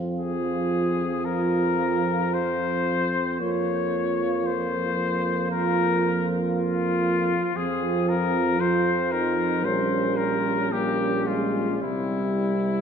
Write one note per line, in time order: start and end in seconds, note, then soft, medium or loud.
0.00 3.37 F2 soft
0.00 3.24 F3 soft
0.00 3.42 C4 soft
0.00 3.24 F4 soft
0.17 1.26 G#4 soft
1.25 2.35 A#4 medium
2.34 3.40 C5 medium
3.40 7.40 F2 soft
3.40 7.52 F3 soft
3.40 7.40 A#3 soft
3.40 7.53 F4 soft
3.40 4.48 C#5 medium
4.46 5.51 C5 medium
5.51 6.27 A#4 medium
6.54 7.58 F4 medium
7.56 9.65 F2 medium
7.56 8.56 F3 soft
7.56 8.56 C4 soft
7.56 8.56 F4 soft
7.56 8.10 G#4 medium
8.09 8.62 A#4 medium
8.59 9.65 F3 soft
8.59 9.65 C4 soft
8.59 9.11 F4 soft
8.59 9.13 C5 medium
9.11 9.64 D#4 soft
9.11 9.66 A#4 medium
9.64 11.82 A#1 soft
9.64 10.70 G3 soft
9.64 10.70 A#3 soft
9.64 10.71 C#4 soft
9.64 10.19 C5 medium
10.17 10.73 A#4 medium
10.71 11.66 G3 soft
10.71 11.25 A#3 soft
10.71 11.81 C#4 soft
10.71 11.28 G4 medium
11.26 11.83 G#3 soft
11.26 11.82 F4 medium
11.81 12.81 C2 soft
11.81 12.81 G3 soft
11.81 12.81 C4 soft
11.81 12.81 E4 soft